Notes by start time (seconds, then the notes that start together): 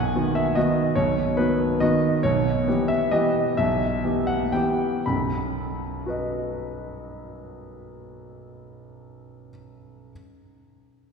Already playing: B1 B2 F#5 G#5
0.15 D#3 B3 F#4
0.35 E5
0.55 D#3 B3 F#4 D#5
0.95 B1 B2 C#5
1.37 D#3 B3 F#4 B4
1.80 D#3 B3 F#4 D#5
2.23 B1 B2 C#5
2.67 E3 B3 G4
2.88 E5
3.11 E3 B3 G4 D#5
3.57 B1 B2 E5
4.03 E3 B3 G4
4.27 F#5
4.52 E3 B3 G4 G5
5.06 B1 F#2 B5
6.06 F#4 B4
6.10 D#5